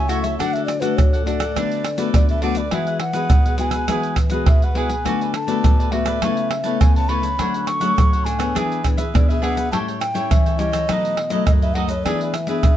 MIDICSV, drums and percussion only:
0, 0, Header, 1, 4, 480
1, 0, Start_track
1, 0, Tempo, 583090
1, 321, Time_signature, 4, 2, 24, 8
1, 10511, End_track
2, 0, Start_track
2, 0, Title_t, "Pandeiro"
2, 77, Note_on_c, 9, 54, 72
2, 159, Note_off_c, 9, 54, 0
2, 196, Note_on_c, 9, 54, 59
2, 279, Note_off_c, 9, 54, 0
2, 331, Note_on_c, 9, 54, 78
2, 413, Note_off_c, 9, 54, 0
2, 457, Note_on_c, 9, 54, 35
2, 539, Note_off_c, 9, 54, 0
2, 563, Note_on_c, 9, 54, 72
2, 645, Note_off_c, 9, 54, 0
2, 674, Note_on_c, 9, 54, 66
2, 756, Note_off_c, 9, 54, 0
2, 810, Note_on_c, 9, 54, 73
2, 893, Note_off_c, 9, 54, 0
2, 936, Note_on_c, 9, 54, 38
2, 1019, Note_off_c, 9, 54, 0
2, 1045, Note_on_c, 9, 54, 67
2, 1127, Note_off_c, 9, 54, 0
2, 1154, Note_on_c, 9, 54, 61
2, 1236, Note_off_c, 9, 54, 0
2, 1288, Note_on_c, 9, 54, 80
2, 1370, Note_off_c, 9, 54, 0
2, 1412, Note_on_c, 9, 54, 36
2, 1494, Note_off_c, 9, 54, 0
2, 1519, Note_on_c, 9, 54, 67
2, 1601, Note_off_c, 9, 54, 0
2, 1628, Note_on_c, 9, 54, 62
2, 1711, Note_off_c, 9, 54, 0
2, 1762, Note_on_c, 9, 54, 86
2, 1844, Note_off_c, 9, 54, 0
2, 1883, Note_on_c, 9, 54, 33
2, 1965, Note_off_c, 9, 54, 0
2, 1991, Note_on_c, 9, 54, 62
2, 2074, Note_off_c, 9, 54, 0
2, 2098, Note_on_c, 9, 54, 56
2, 2181, Note_off_c, 9, 54, 0
2, 2234, Note_on_c, 9, 54, 82
2, 2316, Note_off_c, 9, 54, 0
2, 2360, Note_on_c, 9, 54, 35
2, 2443, Note_off_c, 9, 54, 0
2, 2466, Note_on_c, 9, 54, 74
2, 2549, Note_off_c, 9, 54, 0
2, 2580, Note_on_c, 9, 54, 66
2, 2662, Note_off_c, 9, 54, 0
2, 2714, Note_on_c, 9, 54, 78
2, 2796, Note_off_c, 9, 54, 0
2, 2845, Note_on_c, 9, 54, 38
2, 2927, Note_off_c, 9, 54, 0
2, 2946, Note_on_c, 9, 54, 69
2, 3029, Note_off_c, 9, 54, 0
2, 3056, Note_on_c, 9, 54, 61
2, 3138, Note_off_c, 9, 54, 0
2, 3194, Note_on_c, 9, 54, 87
2, 3277, Note_off_c, 9, 54, 0
2, 3320, Note_on_c, 9, 54, 34
2, 3402, Note_off_c, 9, 54, 0
2, 3426, Note_on_c, 9, 54, 73
2, 3509, Note_off_c, 9, 54, 0
2, 3537, Note_on_c, 9, 54, 60
2, 3619, Note_off_c, 9, 54, 0
2, 3675, Note_on_c, 9, 54, 81
2, 3757, Note_off_c, 9, 54, 0
2, 3805, Note_on_c, 9, 54, 35
2, 3887, Note_off_c, 9, 54, 0
2, 3912, Note_on_c, 9, 54, 69
2, 3995, Note_off_c, 9, 54, 0
2, 4029, Note_on_c, 9, 54, 62
2, 4112, Note_off_c, 9, 54, 0
2, 4162, Note_on_c, 9, 54, 75
2, 4244, Note_off_c, 9, 54, 0
2, 4291, Note_on_c, 9, 54, 35
2, 4374, Note_off_c, 9, 54, 0
2, 4395, Note_on_c, 9, 54, 71
2, 4477, Note_off_c, 9, 54, 0
2, 4510, Note_on_c, 9, 54, 59
2, 4593, Note_off_c, 9, 54, 0
2, 4644, Note_on_c, 9, 54, 81
2, 4727, Note_off_c, 9, 54, 0
2, 4774, Note_on_c, 9, 54, 38
2, 4857, Note_off_c, 9, 54, 0
2, 4873, Note_on_c, 9, 54, 69
2, 4955, Note_off_c, 9, 54, 0
2, 4986, Note_on_c, 9, 54, 60
2, 5068, Note_off_c, 9, 54, 0
2, 5121, Note_on_c, 9, 54, 89
2, 5203, Note_off_c, 9, 54, 0
2, 5244, Note_on_c, 9, 54, 33
2, 5326, Note_off_c, 9, 54, 0
2, 5356, Note_on_c, 9, 54, 72
2, 5438, Note_off_c, 9, 54, 0
2, 5464, Note_on_c, 9, 54, 59
2, 5547, Note_off_c, 9, 54, 0
2, 5605, Note_on_c, 9, 54, 88
2, 5687, Note_off_c, 9, 54, 0
2, 5731, Note_on_c, 9, 54, 32
2, 5813, Note_off_c, 9, 54, 0
2, 5837, Note_on_c, 9, 54, 65
2, 5920, Note_off_c, 9, 54, 0
2, 5954, Note_on_c, 9, 54, 56
2, 6036, Note_off_c, 9, 54, 0
2, 6084, Note_on_c, 9, 54, 75
2, 6166, Note_off_c, 9, 54, 0
2, 6209, Note_on_c, 9, 54, 37
2, 6291, Note_off_c, 9, 54, 0
2, 6316, Note_on_c, 9, 54, 75
2, 6398, Note_off_c, 9, 54, 0
2, 6429, Note_on_c, 9, 54, 65
2, 6512, Note_off_c, 9, 54, 0
2, 6570, Note_on_c, 9, 54, 87
2, 6652, Note_off_c, 9, 54, 0
2, 6696, Note_on_c, 9, 54, 39
2, 6778, Note_off_c, 9, 54, 0
2, 6802, Note_on_c, 9, 54, 70
2, 6885, Note_off_c, 9, 54, 0
2, 6913, Note_on_c, 9, 54, 64
2, 6995, Note_off_c, 9, 54, 0
2, 7047, Note_on_c, 9, 54, 83
2, 7130, Note_off_c, 9, 54, 0
2, 7177, Note_on_c, 9, 54, 36
2, 7259, Note_off_c, 9, 54, 0
2, 7281, Note_on_c, 9, 54, 76
2, 7363, Note_off_c, 9, 54, 0
2, 7392, Note_on_c, 9, 54, 62
2, 7475, Note_off_c, 9, 54, 0
2, 7533, Note_on_c, 9, 54, 84
2, 7615, Note_off_c, 9, 54, 0
2, 7659, Note_on_c, 9, 54, 34
2, 7741, Note_off_c, 9, 54, 0
2, 7768, Note_on_c, 9, 54, 74
2, 7851, Note_off_c, 9, 54, 0
2, 7880, Note_on_c, 9, 54, 61
2, 7962, Note_off_c, 9, 54, 0
2, 8011, Note_on_c, 9, 54, 79
2, 8094, Note_off_c, 9, 54, 0
2, 8136, Note_on_c, 9, 54, 33
2, 8219, Note_off_c, 9, 54, 0
2, 8244, Note_on_c, 9, 54, 75
2, 8326, Note_off_c, 9, 54, 0
2, 8356, Note_on_c, 9, 54, 63
2, 8439, Note_off_c, 9, 54, 0
2, 8488, Note_on_c, 9, 54, 75
2, 8570, Note_off_c, 9, 54, 0
2, 8612, Note_on_c, 9, 54, 36
2, 8695, Note_off_c, 9, 54, 0
2, 8717, Note_on_c, 9, 54, 67
2, 8799, Note_off_c, 9, 54, 0
2, 8836, Note_on_c, 9, 54, 61
2, 8919, Note_off_c, 9, 54, 0
2, 8964, Note_on_c, 9, 54, 85
2, 9046, Note_off_c, 9, 54, 0
2, 9095, Note_on_c, 9, 54, 36
2, 9178, Note_off_c, 9, 54, 0
2, 9198, Note_on_c, 9, 54, 69
2, 9280, Note_off_c, 9, 54, 0
2, 9304, Note_on_c, 9, 54, 65
2, 9387, Note_off_c, 9, 54, 0
2, 9440, Note_on_c, 9, 54, 82
2, 9522, Note_off_c, 9, 54, 0
2, 9569, Note_on_c, 9, 54, 33
2, 9651, Note_off_c, 9, 54, 0
2, 9676, Note_on_c, 9, 54, 69
2, 9758, Note_off_c, 9, 54, 0
2, 9784, Note_on_c, 9, 54, 60
2, 9866, Note_off_c, 9, 54, 0
2, 9925, Note_on_c, 9, 54, 80
2, 10007, Note_off_c, 9, 54, 0
2, 10050, Note_on_c, 9, 54, 36
2, 10132, Note_off_c, 9, 54, 0
2, 10156, Note_on_c, 9, 54, 72
2, 10238, Note_off_c, 9, 54, 0
2, 10265, Note_on_c, 9, 54, 63
2, 10347, Note_off_c, 9, 54, 0
2, 10399, Note_on_c, 9, 54, 83
2, 10481, Note_off_c, 9, 54, 0
2, 10511, End_track
3, 0, Start_track
3, 0, Title_t, "Tamborim"
3, 331, Note_on_c, 9, 60, 81
3, 413, Note_off_c, 9, 60, 0
3, 563, Note_on_c, 9, 60, 80
3, 645, Note_off_c, 9, 60, 0
3, 810, Note_on_c, 9, 60, 77
3, 893, Note_off_c, 9, 60, 0
3, 1154, Note_on_c, 9, 60, 89
3, 1236, Note_off_c, 9, 60, 0
3, 1288, Note_on_c, 9, 60, 86
3, 1370, Note_off_c, 9, 60, 0
3, 1519, Note_on_c, 9, 60, 85
3, 1601, Note_off_c, 9, 60, 0
3, 1762, Note_on_c, 9, 60, 84
3, 1844, Note_off_c, 9, 60, 0
3, 2234, Note_on_c, 9, 60, 86
3, 2316, Note_off_c, 9, 60, 0
3, 2466, Note_on_c, 9, 60, 81
3, 2549, Note_off_c, 9, 60, 0
3, 2714, Note_on_c, 9, 60, 70
3, 2796, Note_off_c, 9, 60, 0
3, 3056, Note_on_c, 9, 60, 89
3, 3138, Note_off_c, 9, 60, 0
3, 3194, Note_on_c, 9, 60, 86
3, 3277, Note_off_c, 9, 60, 0
3, 3426, Note_on_c, 9, 60, 88
3, 3509, Note_off_c, 9, 60, 0
3, 3675, Note_on_c, 9, 60, 87
3, 3757, Note_off_c, 9, 60, 0
3, 4162, Note_on_c, 9, 60, 73
3, 4244, Note_off_c, 9, 60, 0
3, 4395, Note_on_c, 9, 60, 85
3, 4477, Note_off_c, 9, 60, 0
3, 4644, Note_on_c, 9, 60, 77
3, 4727, Note_off_c, 9, 60, 0
3, 4986, Note_on_c, 9, 60, 91
3, 5068, Note_off_c, 9, 60, 0
3, 5121, Note_on_c, 9, 60, 88
3, 5203, Note_off_c, 9, 60, 0
3, 5356, Note_on_c, 9, 60, 87
3, 5438, Note_off_c, 9, 60, 0
3, 5605, Note_on_c, 9, 60, 83
3, 5687, Note_off_c, 9, 60, 0
3, 6084, Note_on_c, 9, 60, 79
3, 6166, Note_off_c, 9, 60, 0
3, 6316, Note_on_c, 9, 60, 80
3, 6398, Note_off_c, 9, 60, 0
3, 6570, Note_on_c, 9, 60, 84
3, 6652, Note_off_c, 9, 60, 0
3, 6913, Note_on_c, 9, 60, 87
3, 6995, Note_off_c, 9, 60, 0
3, 7047, Note_on_c, 9, 60, 91
3, 7130, Note_off_c, 9, 60, 0
3, 7281, Note_on_c, 9, 60, 83
3, 7363, Note_off_c, 9, 60, 0
3, 7533, Note_on_c, 9, 60, 90
3, 7615, Note_off_c, 9, 60, 0
3, 8011, Note_on_c, 9, 60, 81
3, 8094, Note_off_c, 9, 60, 0
3, 8244, Note_on_c, 9, 60, 92
3, 8326, Note_off_c, 9, 60, 0
3, 8488, Note_on_c, 9, 60, 84
3, 8570, Note_off_c, 9, 60, 0
3, 8836, Note_on_c, 9, 60, 82
3, 8919, Note_off_c, 9, 60, 0
3, 8964, Note_on_c, 9, 60, 93
3, 9046, Note_off_c, 9, 60, 0
3, 9198, Note_on_c, 9, 60, 82
3, 9280, Note_off_c, 9, 60, 0
3, 9440, Note_on_c, 9, 60, 93
3, 9522, Note_off_c, 9, 60, 0
3, 9925, Note_on_c, 9, 60, 85
3, 10007, Note_off_c, 9, 60, 0
3, 10156, Note_on_c, 9, 60, 89
3, 10238, Note_off_c, 9, 60, 0
3, 10399, Note_on_c, 9, 60, 80
3, 10481, Note_off_c, 9, 60, 0
3, 10511, End_track
4, 0, Start_track
4, 0, Title_t, "Drums"
4, 77, Note_on_c, 9, 82, 67
4, 159, Note_off_c, 9, 82, 0
4, 196, Note_on_c, 9, 82, 89
4, 279, Note_off_c, 9, 82, 0
4, 331, Note_on_c, 9, 82, 78
4, 331, Note_on_c, 9, 87, 56
4, 413, Note_off_c, 9, 82, 0
4, 413, Note_off_c, 9, 87, 0
4, 457, Note_on_c, 9, 82, 39
4, 539, Note_off_c, 9, 82, 0
4, 563, Note_on_c, 9, 82, 71
4, 645, Note_off_c, 9, 82, 0
4, 674, Note_on_c, 9, 82, 90
4, 756, Note_off_c, 9, 82, 0
4, 810, Note_on_c, 9, 82, 76
4, 810, Note_on_c, 9, 87, 103
4, 893, Note_off_c, 9, 82, 0
4, 893, Note_off_c, 9, 87, 0
4, 936, Note_on_c, 9, 82, 38
4, 1019, Note_off_c, 9, 82, 0
4, 1045, Note_on_c, 9, 82, 66
4, 1127, Note_off_c, 9, 82, 0
4, 1154, Note_on_c, 9, 82, 80
4, 1236, Note_off_c, 9, 82, 0
4, 1288, Note_on_c, 9, 82, 90
4, 1288, Note_on_c, 9, 87, 63
4, 1370, Note_off_c, 9, 82, 0
4, 1370, Note_off_c, 9, 87, 0
4, 1412, Note_on_c, 9, 82, 33
4, 1494, Note_off_c, 9, 82, 0
4, 1519, Note_on_c, 9, 82, 74
4, 1601, Note_off_c, 9, 82, 0
4, 1628, Note_on_c, 9, 82, 91
4, 1711, Note_off_c, 9, 82, 0
4, 1762, Note_on_c, 9, 82, 85
4, 1762, Note_on_c, 9, 87, 103
4, 1844, Note_off_c, 9, 82, 0
4, 1844, Note_off_c, 9, 87, 0
4, 1883, Note_on_c, 9, 82, 35
4, 1965, Note_off_c, 9, 82, 0
4, 1991, Note_on_c, 9, 82, 66
4, 2074, Note_off_c, 9, 82, 0
4, 2098, Note_on_c, 9, 82, 77
4, 2181, Note_off_c, 9, 82, 0
4, 2234, Note_on_c, 9, 82, 72
4, 2234, Note_on_c, 9, 87, 62
4, 2316, Note_off_c, 9, 82, 0
4, 2316, Note_off_c, 9, 87, 0
4, 2360, Note_on_c, 9, 82, 36
4, 2443, Note_off_c, 9, 82, 0
4, 2580, Note_on_c, 9, 82, 82
4, 2662, Note_off_c, 9, 82, 0
4, 2714, Note_on_c, 9, 82, 81
4, 2714, Note_on_c, 9, 87, 104
4, 2796, Note_off_c, 9, 82, 0
4, 2796, Note_off_c, 9, 87, 0
4, 2845, Note_on_c, 9, 82, 37
4, 2927, Note_off_c, 9, 82, 0
4, 2946, Note_on_c, 9, 82, 68
4, 3029, Note_off_c, 9, 82, 0
4, 3056, Note_on_c, 9, 82, 84
4, 3138, Note_off_c, 9, 82, 0
4, 3194, Note_on_c, 9, 82, 84
4, 3194, Note_on_c, 9, 87, 61
4, 3277, Note_off_c, 9, 82, 0
4, 3277, Note_off_c, 9, 87, 0
4, 3320, Note_on_c, 9, 82, 34
4, 3402, Note_off_c, 9, 82, 0
4, 3426, Note_on_c, 9, 82, 70
4, 3426, Note_on_c, 9, 87, 75
4, 3509, Note_off_c, 9, 82, 0
4, 3509, Note_off_c, 9, 87, 0
4, 3537, Note_on_c, 9, 82, 84
4, 3619, Note_off_c, 9, 82, 0
4, 3675, Note_on_c, 9, 82, 79
4, 3675, Note_on_c, 9, 87, 113
4, 3757, Note_off_c, 9, 82, 0
4, 3757, Note_off_c, 9, 87, 0
4, 3805, Note_on_c, 9, 82, 35
4, 3887, Note_off_c, 9, 82, 0
4, 4029, Note_on_c, 9, 82, 78
4, 4112, Note_off_c, 9, 82, 0
4, 4162, Note_on_c, 9, 82, 83
4, 4162, Note_on_c, 9, 87, 62
4, 4244, Note_off_c, 9, 82, 0
4, 4244, Note_off_c, 9, 87, 0
4, 4291, Note_on_c, 9, 82, 35
4, 4374, Note_off_c, 9, 82, 0
4, 4395, Note_on_c, 9, 82, 68
4, 4477, Note_off_c, 9, 82, 0
4, 4510, Note_on_c, 9, 82, 85
4, 4593, Note_off_c, 9, 82, 0
4, 4644, Note_on_c, 9, 82, 76
4, 4644, Note_on_c, 9, 87, 102
4, 4727, Note_off_c, 9, 82, 0
4, 4727, Note_off_c, 9, 87, 0
4, 4774, Note_on_c, 9, 82, 36
4, 4857, Note_off_c, 9, 82, 0
4, 4986, Note_on_c, 9, 82, 81
4, 5068, Note_off_c, 9, 82, 0
4, 5121, Note_on_c, 9, 82, 92
4, 5121, Note_on_c, 9, 87, 63
4, 5203, Note_off_c, 9, 82, 0
4, 5203, Note_off_c, 9, 87, 0
4, 5244, Note_on_c, 9, 82, 33
4, 5326, Note_off_c, 9, 82, 0
4, 5464, Note_on_c, 9, 82, 77
4, 5547, Note_off_c, 9, 82, 0
4, 5605, Note_on_c, 9, 82, 87
4, 5605, Note_on_c, 9, 87, 109
4, 5687, Note_off_c, 9, 82, 0
4, 5687, Note_off_c, 9, 87, 0
4, 5731, Note_on_c, 9, 82, 31
4, 5813, Note_off_c, 9, 82, 0
4, 5954, Note_on_c, 9, 82, 81
4, 6036, Note_off_c, 9, 82, 0
4, 6084, Note_on_c, 9, 82, 78
4, 6084, Note_on_c, 9, 87, 58
4, 6166, Note_off_c, 9, 82, 0
4, 6166, Note_off_c, 9, 87, 0
4, 6209, Note_on_c, 9, 82, 37
4, 6291, Note_off_c, 9, 82, 0
4, 6316, Note_on_c, 9, 82, 72
4, 6398, Note_off_c, 9, 82, 0
4, 6429, Note_on_c, 9, 82, 84
4, 6512, Note_off_c, 9, 82, 0
4, 6570, Note_on_c, 9, 82, 85
4, 6570, Note_on_c, 9, 87, 103
4, 6652, Note_off_c, 9, 82, 0
4, 6652, Note_off_c, 9, 87, 0
4, 6696, Note_on_c, 9, 82, 39
4, 6778, Note_off_c, 9, 82, 0
4, 6802, Note_on_c, 9, 82, 72
4, 6885, Note_off_c, 9, 82, 0
4, 6913, Note_on_c, 9, 82, 96
4, 6995, Note_off_c, 9, 82, 0
4, 7047, Note_on_c, 9, 82, 94
4, 7047, Note_on_c, 9, 87, 66
4, 7130, Note_off_c, 9, 82, 0
4, 7130, Note_off_c, 9, 87, 0
4, 7177, Note_on_c, 9, 82, 33
4, 7259, Note_off_c, 9, 82, 0
4, 7281, Note_on_c, 9, 82, 70
4, 7281, Note_on_c, 9, 87, 77
4, 7363, Note_off_c, 9, 82, 0
4, 7363, Note_off_c, 9, 87, 0
4, 7392, Note_on_c, 9, 82, 89
4, 7475, Note_off_c, 9, 82, 0
4, 7533, Note_on_c, 9, 82, 84
4, 7533, Note_on_c, 9, 87, 109
4, 7615, Note_off_c, 9, 82, 0
4, 7615, Note_off_c, 9, 87, 0
4, 7659, Note_on_c, 9, 82, 36
4, 7741, Note_off_c, 9, 82, 0
4, 7880, Note_on_c, 9, 82, 89
4, 7962, Note_off_c, 9, 82, 0
4, 8011, Note_on_c, 9, 82, 72
4, 8011, Note_on_c, 9, 87, 60
4, 8094, Note_off_c, 9, 82, 0
4, 8094, Note_off_c, 9, 87, 0
4, 8136, Note_on_c, 9, 82, 34
4, 8219, Note_off_c, 9, 82, 0
4, 8244, Note_on_c, 9, 82, 70
4, 8326, Note_off_c, 9, 82, 0
4, 8356, Note_on_c, 9, 82, 87
4, 8439, Note_off_c, 9, 82, 0
4, 8488, Note_on_c, 9, 82, 83
4, 8488, Note_on_c, 9, 87, 98
4, 8570, Note_off_c, 9, 82, 0
4, 8570, Note_off_c, 9, 87, 0
4, 8612, Note_on_c, 9, 82, 35
4, 8695, Note_off_c, 9, 82, 0
4, 8717, Note_on_c, 9, 82, 66
4, 8799, Note_off_c, 9, 82, 0
4, 8836, Note_on_c, 9, 82, 85
4, 8919, Note_off_c, 9, 82, 0
4, 8964, Note_on_c, 9, 82, 82
4, 8964, Note_on_c, 9, 87, 62
4, 9046, Note_off_c, 9, 82, 0
4, 9046, Note_off_c, 9, 87, 0
4, 9095, Note_on_c, 9, 82, 33
4, 9178, Note_off_c, 9, 82, 0
4, 9304, Note_on_c, 9, 82, 83
4, 9387, Note_off_c, 9, 82, 0
4, 9440, Note_on_c, 9, 82, 90
4, 9440, Note_on_c, 9, 87, 106
4, 9522, Note_off_c, 9, 82, 0
4, 9522, Note_off_c, 9, 87, 0
4, 9569, Note_on_c, 9, 82, 35
4, 9651, Note_off_c, 9, 82, 0
4, 9784, Note_on_c, 9, 82, 84
4, 9866, Note_off_c, 9, 82, 0
4, 9925, Note_on_c, 9, 82, 80
4, 9925, Note_on_c, 9, 87, 60
4, 10007, Note_off_c, 9, 82, 0
4, 10007, Note_off_c, 9, 87, 0
4, 10050, Note_on_c, 9, 82, 35
4, 10132, Note_off_c, 9, 82, 0
4, 10156, Note_on_c, 9, 82, 73
4, 10238, Note_off_c, 9, 82, 0
4, 10265, Note_on_c, 9, 82, 85
4, 10347, Note_off_c, 9, 82, 0
4, 10399, Note_on_c, 9, 82, 74
4, 10399, Note_on_c, 9, 87, 96
4, 10481, Note_off_c, 9, 82, 0
4, 10481, Note_off_c, 9, 87, 0
4, 10511, End_track
0, 0, End_of_file